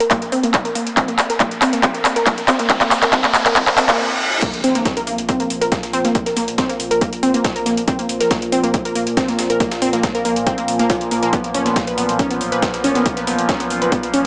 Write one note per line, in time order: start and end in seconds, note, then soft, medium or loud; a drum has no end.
0.00 0.07 A#4 medium
0.00 closed hi-hat medium
0.00 riser medium
0.11 0.18 A#3 medium
0.11 kick loud
0.11 clap medium
0.11 closed hi-hat medium
0.22 closed hi-hat medium
0.32 0.39 C4 loud
0.32 open hi-hat loud
0.43 0.50 A#3 medium
0.43 closed hi-hat medium
0.54 kick loud
0.54 clap medium
0.54 closed hi-hat medium
0.65 0.72 A#4 medium
0.65 closed hi-hat medium
0.75 0.82 A#3 medium
0.75 open hi-hat loud
0.87 closed hi-hat medium
0.97 1.04 C4 medium
0.97 kick loud
0.97 clap medium
0.97 closed hi-hat medium
1.08 1.15 A#3 medium
1.08 closed hi-hat medium
1.19 clap medium
1.19 open hi-hat loud
1.30 1.36 A#4 medium
1.30 closed hi-hat medium
1.40 1.47 A#3 medium
1.40 kick loud
1.40 clap medium
1.40 closed hi-hat medium
1.51 closed hi-hat medium
1.62 1.69 C4 medium
1.62 clap medium
1.62 open hi-hat loud
1.73 1.79 A#3 medium
1.73 closed hi-hat medium
1.83 1.90 C4 loud
1.83 kick loud
1.83 clap medium
1.83 closed hi-hat medium
1.94 2.01 A#3 medium
1.94 closed hi-hat medium
2.05 clap medium
2.05 open hi-hat loud
2.16 2.23 A#4 medium
2.16 closed hi-hat medium
2.26 2.34 A#3 medium
2.26 kick loud
2.26 clap medium
2.26 closed hi-hat medium
2.38 closed hi-hat medium
2.48 2.55 C4 loud
2.48 clap medium
2.48 open hi-hat loud
2.59 2.66 A#3 medium
2.59 closed hi-hat medium
2.70 2.77 C4 loud
2.70 kick loud
2.70 clap medium
2.70 closed hi-hat medium
2.81 2.87 A#3 medium
2.81 clap medium
2.81 closed hi-hat medium
2.91 clap loud
2.91 open hi-hat loud
3.02 3.09 A#4 medium
3.02 clap medium
3.02 closed hi-hat medium
3.13 3.20 C4 loud
3.13 kick loud
3.13 clap loud
3.13 closed hi-hat medium
3.24 3.31 A#3 medium
3.24 clap medium
3.24 closed hi-hat medium
3.34 clap loud
3.34 open hi-hat loud
3.46 3.52 A#4 medium
3.46 clap medium
3.46 closed hi-hat medium
3.56 3.63 C4 loud
3.56 kick loud
3.56 clap loud
3.56 closed hi-hat medium
3.56 reverse cymbal medium
3.67 3.74 A#3 medium
3.67 clap medium
3.67 closed hi-hat medium
3.77 3.85 C4 loud
3.77 clap loud
3.77 open hi-hat loud
3.89 3.95 A#3 medium
3.89 clap medium
3.89 closed hi-hat medium
4.42 14.27 A#2 medium
4.42 14.27 F3 medium
4.42 4.49 A#3 medium
4.42 kick loud
4.42 closed hi-hat medium
4.42 crash loud
4.42 impact medium
4.54 4.63 A#1 medium
4.54 closed hi-hat medium
4.64 4.75 A#1 loud
4.64 4.71 C4 loud
4.64 closed hi-hat medium
4.64 open hi-hat loud
4.75 4.82 A#3 medium
4.75 snare soft
4.75 closed hi-hat medium
4.85 kick loud
4.85 snare loud
4.85 closed hi-hat medium
4.97 5.06 A#1 medium
4.97 5.03 A#4 medium
4.97 closed hi-hat soft
4.97 closed hi-hat medium
5.07 5.18 A#1 loud
5.07 5.14 A#3 medium
5.07 closed hi-hat medium
5.07 open hi-hat loud
5.18 5.28 A#1 medium
5.18 closed hi-hat soft
5.18 closed hi-hat medium
5.29 5.36 C4 loud
5.29 kick loud
5.29 closed hi-hat medium
5.40 5.50 A#1 medium
5.40 5.46 A#3 medium
5.40 closed hi-hat medium
5.50 5.61 A#1 loud
5.50 closed hi-hat medium
5.50 open hi-hat loud
5.61 5.68 A#4 medium
5.61 closed hi-hat soft
5.61 closed hi-hat medium
5.72 5.79 A#3 medium
5.72 kick loud
5.72 snare loud
5.72 closed hi-hat medium
5.83 5.93 A#1 medium
5.83 snare medium
5.83 closed hi-hat medium
5.93 6.04 A#1 loud
5.93 6.00 C4 loud
5.93 snare soft
5.93 closed hi-hat medium
5.93 open hi-hat loud
6.05 6.11 A#3 medium
6.05 snare medium
6.05 closed hi-hat medium
6.15 kick loud
6.15 closed hi-hat medium
6.26 6.36 A#1 medium
6.26 6.33 A#4 medium
6.26 snare soft
6.26 closed hi-hat medium
6.36 6.48 A#1 medium
6.36 6.44 A#3 medium
6.36 snare medium
6.36 closed hi-hat medium
6.36 open hi-hat loud
6.48 closed hi-hat medium
6.58 6.65 C4 loud
6.58 kick loud
6.58 snare loud
6.58 closed hi-hat medium
6.69 6.79 A#1 medium
6.69 6.76 A#3 medium
6.69 snare soft
6.69 closed hi-hat medium
6.80 6.90 A#1 loud
6.80 closed hi-hat medium
6.80 open hi-hat loud
6.91 7.01 A#1 medium
6.91 6.97 A#4 medium
6.91 closed hi-hat medium
7.01 7.08 A#3 medium
7.01 kick loud
7.01 closed hi-hat medium
7.13 7.22 A#1 medium
7.13 closed hi-hat medium
7.23 7.34 A#1 loud
7.23 7.30 C4 loud
7.23 closed hi-hat medium
7.23 open hi-hat loud
7.34 7.41 A#3 medium
7.34 closed hi-hat soft
7.34 closed hi-hat medium
7.44 kick loud
7.44 snare loud
7.44 closed hi-hat medium
7.56 7.65 A#1 medium
7.56 7.62 A#4 medium
7.56 closed hi-hat medium
7.66 7.77 A#1 medium
7.66 7.73 A#3 medium
7.66 snare soft
7.66 closed hi-hat medium
7.66 open hi-hat loud
7.77 closed hi-hat medium
7.88 7.95 C4 loud
7.88 kick loud
7.88 closed hi-hat medium
7.99 8.09 A#1 medium
7.99 8.05 A#3 medium
7.99 closed hi-hat medium
8.09 8.20 A#1 loud
8.09 closed hi-hat medium
8.09 open hi-hat loud
8.20 8.27 A#4 medium
8.20 snare soft
8.20 closed hi-hat medium
8.31 8.38 A#3 medium
8.31 kick loud
8.31 snare loud
8.31 closed hi-hat medium
8.42 8.52 A#1 medium
8.42 closed hi-hat soft
8.42 closed hi-hat medium
8.52 8.63 A#1 loud
8.52 8.59 C4 loud
8.52 closed hi-hat medium
8.52 open hi-hat loud
8.63 8.74 A#1 medium
8.63 8.70 A#3 medium
8.63 closed hi-hat soft
8.63 closed hi-hat medium
8.74 kick loud
8.74 closed hi-hat medium
8.85 8.95 A#1 medium
8.85 8.92 A#4 medium
8.85 closed hi-hat medium
8.95 9.07 A#1 loud
8.95 9.03 A#3 medium
8.95 closed hi-hat medium
8.95 open hi-hat loud
9.07 closed hi-hat soft
9.07 closed hi-hat medium
9.17 9.24 C4 loud
9.17 kick loud
9.17 snare loud
9.17 closed hi-hat loud
9.17 closed hi-hat medium
9.28 9.38 A#1 medium
9.28 9.35 A#3 medium
9.28 snare medium
9.28 closed hi-hat medium
9.39 9.50 A#1 loud
9.39 snare loud
9.39 closed hi-hat medium
9.39 open hi-hat loud
9.50 9.56 A#4 medium
9.50 closed hi-hat medium
9.60 9.67 A#3 medium
9.60 kick loud
9.60 snare soft
9.60 closed hi-hat medium
9.71 9.81 A#1 medium
9.71 snare loud
9.71 closed hi-hat medium
9.82 9.93 A#1 loud
9.82 9.89 C4 loud
9.82 open hi-hat loud
9.93 10.00 A#3 medium
9.93 snare soft
9.93 closed hi-hat medium
10.03 kick loud
10.03 snare loud
10.03 closed hi-hat medium
10.15 10.24 A#1 medium
10.15 10.21 A#4 medium
10.15 snare soft
10.15 closed hi-hat soft
10.25 10.36 A#1 loud
10.25 10.32 A#3 medium
10.25 closed hi-hat medium
10.25 open hi-hat loud
10.36 10.46 A#1 medium
10.36 closed hi-hat medium
10.47 10.54 C4 loud
10.47 kick loud
10.47 closed hi-hat medium
10.58 10.68 A#1 medium
10.58 10.64 A#3 medium
10.58 closed hi-hat medium
10.68 10.79 A#1 medium
10.68 closed hi-hat medium
10.68 open hi-hat loud
10.79 10.86 A#3 loud
10.79 closed hi-hat medium
10.79 closed hi-hat soft
10.90 10.94 F4 medium
10.90 kick loud
10.90 snare loud
10.90 closed hi-hat medium
11.01 11.11 A#1 medium
11.01 closed hi-hat medium
11.11 11.22 A#1 loud
11.11 11.21 A#3 medium
11.11 snare soft
11.11 closed hi-hat medium
11.11 open hi-hat loud
11.23 11.29 A#3 loud
11.23 closed hi-hat medium
11.33 11.40 B3 medium
11.33 kick loud
11.33 closed hi-hat medium
11.44 11.54 B1 medium
11.44 closed hi-hat medium
11.54 11.66 B1 medium
11.54 11.62 C#4 loud
11.54 closed hi-hat medium
11.54 open hi-hat loud
11.66 11.72 B3 medium
11.66 snare soft
11.66 closed hi-hat soft
11.76 kick loud
11.76 snare loud
11.76 closed hi-hat medium
11.87 11.97 B1 medium
11.87 11.94 B4 medium
11.87 closed hi-hat soft
11.87 closed hi-hat medium
11.98 12.08 B1 loud
11.98 12.05 B3 medium
11.98 closed hi-hat medium
11.98 open hi-hat loud
12.09 12.19 B1 medium
12.09 closed hi-hat soft
12.19 12.26 C#4 loud
12.19 kick loud
12.19 closed hi-hat medium
12.30 12.40 B1 medium
12.30 12.37 B3 medium
12.30 closed hi-hat medium
12.41 12.52 B1 loud
12.41 closed hi-hat medium
12.41 open hi-hat loud
12.52 12.59 B4 medium
12.52 closed hi-hat soft
12.52 closed hi-hat medium
12.62 12.70 B3 medium
12.62 kick loud
12.62 snare loud
12.62 closed hi-hat medium
12.74 12.83 B1 medium
12.74 snare medium
12.74 closed hi-hat medium
12.84 12.95 B1 loud
12.84 12.91 C#4 loud
12.84 snare soft
12.84 closed hi-hat medium
12.84 open hi-hat loud
12.95 13.02 B3 medium
12.95 snare medium
12.95 closed hi-hat soft
13.06 kick loud
13.06 closed hi-hat medium
13.17 13.27 B1 medium
13.17 13.23 B4 medium
13.17 snare soft
13.17 closed hi-hat medium
13.27 13.38 B1 medium
13.27 13.34 B3 medium
13.27 snare medium
13.27 closed hi-hat medium
13.27 open hi-hat loud
13.39 closed hi-hat medium
13.49 13.56 C#4 loud
13.49 kick loud
13.49 snare loud
13.49 closed hi-hat medium
13.60 13.70 B1 medium
13.60 13.67 B3 medium
13.60 snare soft
13.60 closed hi-hat medium
13.70 13.81 B1 loud
13.70 closed hi-hat medium
13.70 open hi-hat loud
13.82 13.92 B1 medium
13.82 13.88 B4 medium
13.82 closed hi-hat soft
13.92 13.99 B3 medium
13.92 kick loud
13.92 closed hi-hat medium
14.03 14.13 B1 medium
14.03 closed hi-hat soft
14.13 14.25 B1 loud
14.13 14.21 C#4 loud
14.13 closed hi-hat medium
14.13 open hi-hat loud